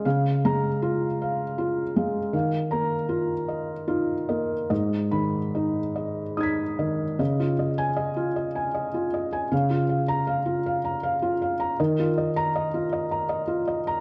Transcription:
<<
  \new Staff \with { instrumentName = "Felt piano" } { \time 3/4 \key des \mixolydian \tempo 4 = 78 << { r8 bes''8. r4. r16 | r8 bes''8. r4. r16 | r8 ces'''8. r8. <ees''' aes''' ces''''>4 | r8. aes''8 r4. r16 |
r8. bes''8 r4. r16 | r8. bes''8 r4. r16 | } \\ { f''8. r16 f'8 f''8 f'8 f''8 | f''8. r16 f'8 ees''8 f'8 ees''8 | ees''8. r16 ees'8 ees''8 ees'8 ees''8 | ees''16 f'16 ees''8 ees''16 f'16 ees''16 aes''16 ees''16 f'16 ees''16 aes''16 |
f''16 f'16 f''8 f''16 f'16 f''16 bes''16 f''16 f'16 f''16 bes''16 | ees''16 f'16 ees''8 ees''16 f'16 ees''16 bes''16 ees''16 f'16 ees''16 bes''16 | } >> }
  \new Staff \with { instrumentName = "Felt piano" } { \clef bass \time 3/4 \key des \mixolydian des8 aes4 r4 aes8 | ees8 bes4 r8 ees'8 bes8 | aes,8 ees4 r4 ees8 | des2. |
des2. | ees2. | }
>>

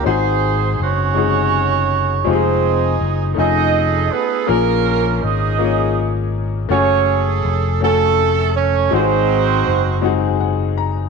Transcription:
<<
  \new Staff \with { instrumentName = "Horn section" } { \time 6/8 \key aes \mixolydian \tempo 4. = 54 << { <c' aes'>4 <des' des''>2 | <c' c''>4 r8 <ees' ees''>4 <ces' ces''>8 | <bes bes'>4 <ees' ees''>4. r8 | <des' des''>4 r8 <a a'>4 <des' des''>8 |
<c' c''>2 r4 | } \\ { <ees' c''>4 ges'2 | <ees' aes'>4. <gis' a'>4. | <des' f'>4 aes'4. r8 | <aes' a'>4. des'4. |
<ees' ges'>2 r4 | } >> }
  \new Staff \with { instrumentName = "Grand piano" } { \time 6/8 \key aes \mixolydian <aes c' ees' ges' aes'>4. <c aes ees' ges' aes'>4. | <aes c' ees' f' g' aes'>4. <a cis' ees' f' gis''>4. | <bes des' f' aes' bes'>4. <bes des' f' aes' des''>4. | <a des' ges' des'' aes''>4. <a des' ges' a' aes''>4. |
<aes c' ees' ges' aes'>4. <aes c' ees' ges' aes'>4. | }
  \new Staff \with { instrumentName = "Grand piano" } { \clef bass \time 6/8 \key aes \mixolydian aes,4. r4. | r2. | bes,4. r4. | r2. |
aes,4. r8 ges''8 bes''8 | }
  \new Staff \with { instrumentName = "Fingered electric bass" } { \clef bass \time 6/8 \key aes \mixolydian aes,,4 ges,,2 | f,,4 ges,,8 f,,4 r8 | bes,,4 aes,,2 | ges,,4 f,,2 |
aes,,4 ges,,2 | }
>>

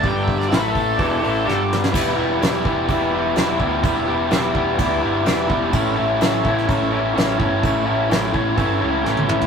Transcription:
<<
  \new Staff \with { instrumentName = "Lead electric guitar" } { \time 4/4 \key g \major \tempo 4 = 126 \tuplet 3/2 { g''8 e''8 d''8 b'8 a'4~ } a'4. r8 | \key e \dorian r1 | r1 | r1 |
r1 | }
  \new Staff \with { instrumentName = "Transistor combo organ" } { \time 4/4 \key g \major <d' g' d''>8 r8 <e' a' e''>8 r8 <d' g' d''>8 r8 <d' g' d''>8 r8 | \key e \dorian <g' b' e''>8 r8 <g' b' e''>8 r8 <g' b' e''>8 r8 <g' b' e''>8 r8 | <g' b' e''>8 r8 <g' b' e''>8 r8 <g' b' e''>8 r8 <g' b' e''>8 r8 | <a' cis'' e''>8 r8 <a' cis'' e''>8 r8 <a' cis'' e''>8 r8 <a' cis'' e''>8 r8 |
<a' cis'' e''>8 r8 <a' cis'' g''>8 r8 <a' cis'' e''>8 r8 <a' cis'' g''>8 r8 | }
  \new Staff \with { instrumentName = "Overdriven electric guitar" } { \time 4/4 \key g \major <g, d g>4 <a, e a>4 <e, b, e>8 <a, e a>8 <g, d g>4 | \key e \dorian <e g b e'>8 <e g b e'>8 <e g b e'>8 <e g b e'>8 <e g b e'>8 <e g b e'>8 <e g b e'>8 <e g b e'>8 | <e g b e'>8 <e g b e'>8 <e g b e'>8 <e g b e'>8 <e g b e'>8 <e g b e'>8 <e g b e'>8 <e g b e'>8 | <a, e a cis' e'>8 <a, e a cis' e'>8 <a, e a cis' e'>8 <a, e a cis' e'>8 <a, e a cis' e'>8 <a, e a cis' e'>8 <a, e a cis' e'>8 <a, e a cis' e'>8 |
<a, e a cis' e'>8 <a, e a cis' e'>8 <a, e a cis' e'>8 <a, e a cis' e'>8 <a, e a cis' e'>8 <a, e a cis' e'>8 <a, e a cis' e'>8 <a, e a cis' e'>8 | }
  \new Staff \with { instrumentName = "Picked electric bass" } { \clef bass \time 4/4 \key g \major g,,4 a,,4 e,,8 a,,8 g,,4 | \key e \dorian e,,8 e,,8 e,,4 e,,4 e,,8 d,8 | e,,8 e,,8 e,,8 e,,8 d,8 g,,8 e,,8 e,,8 | a,,8 a,,8 a,,4 a,,4 a,,8 g,,8 |
a,,8 a,,8 a,,8 a,,8 g,,8 cis,8 a,,8 a,,8 | }
  \new DrumStaff \with { instrumentName = "Drums" } \drummode { \time 4/4 <hho bd>8 <hho bd>16 sn16 <hho sn>8 <hho bd>8 <hho bd>8 hho8 sn8 sn16 sn16 | <cymc bd>4 <cymc sn>8 bd8 <cymc bd>4 <cymc sn>8 bd8 | <cymc bd>4 <cymc sn>8 bd8 <cymc bd>4 <cymc sn>8 bd8 | <cymc bd>4 <cymc sn>8 bd16 sn16 <cymc bd>4 <cymc sn>8 bd8 |
<cymc bd>4 <cymc sn>8 bd8 <cymc bd>4 sn16 tommh16 toml16 tomfh16 | }
>>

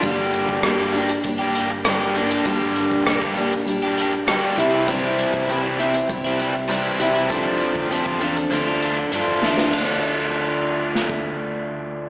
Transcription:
<<
  \new Staff \with { instrumentName = "Steel-string acoustic guitar" } { \time 4/4 \key d \minor \tempo 4 = 99 <g, d g bes d' g'>4 <g bes d' g'>8 <g bes d' g'>8 <g bes d' g'>4 <g bes d' g'>8 <g bes d' g'>8 | <g, d g bes d' g'>4 <g bes d' g'>8 <g bes d' g'>8 <g bes d' g'>4 <g bes d' g'>8 <c' e' g'>8 | <c g c' e' g'>4 <g c' e' g'>8 <c' e' g'>8 <g c' e' g'>4 <g c' e' g'>8 <c' e' g'>8 | <f c' d' a'>4 <f c' d' a'>8 <c' d' a'>8 <f d' a'>4 <f d' a'>8 <d' e' a'>8 |
<d f d' a'>1 | }
  \new Staff \with { instrumentName = "Overdriven electric guitar" } { \time 4/4 \key d \minor <g, d g bes d' g'>4 <g, d g bes d' g'>16 <g bes d' g'>16 <g bes d' g'>8. <g bes d' g'>16 <g bes d' g'>8 <g, d g bes d' g'>8 <g bes d' g'>16 <g bes d' g'>16 | <g, d g bes d' g'>4 <g, d g bes d' g'>16 <g bes d' g'>16 <g bes d' g'>8. <g bes d' g'>16 <g bes d' g'>8 <g, d g bes d' g'>8 <c e g c' e'>16 <g c' e'>16 | <c e g c' e'>4 <c e g c' e'>16 <g c' e'>16 <e g c' e'>8. <g c' e'>16 <e g c' e'>8 <c e g c' e'>8 <e g c' e'>16 <g c' e'>16 | <f, c f a c' f'>4 <f, c f a c' f'>16 <f a c' f'>16 <f a c' f'>8 <d a d' f'>16 <a d' f'>16 <d a d' f'>8 <d a d' f'>8 <d a d' f'>16 <a d' f'>16 |
<d a d' f'>1 | }
  \new Staff \with { instrumentName = "Fretless electric bass" } { \clef bass \time 4/4 \key d \minor g,,8. g,,4~ g,,16 g,,4. g,,8 | g,,8. e,,8 bes,,2 r16 c,8~ | c,8. c,4~ c,16 c,4. c,8 | f,8. d,8 e,8. d,4 g,16 f,16 e,16 d,16 |
d,1 | }
  \new DrumStaff \with { instrumentName = "Drums" } \drummode { \time 4/4 <hh bd>8 hh16 bd16 <hh ss>8 hh16 hh16 <hh bd>8 hh8 <hh ss>8 hh16 hh16 | <hh bd>8 hh16 bd16 <hh ss>16 bd16 hh16 hh16 hh8 hh8 <hh ss>8 hh8 | <hh bd>8 hh16 bd16 hh8 hh16 hh16 <hh bd>8 hh8 hh8 hh16 hh16 | <hh bd>8 hh16 bd16 hh16 bd16 hh16 hh16 hh8 hh8 hh8 sn16 sn16 |
<bd cymr>4 r4 sn16 bd8. r4 | }
>>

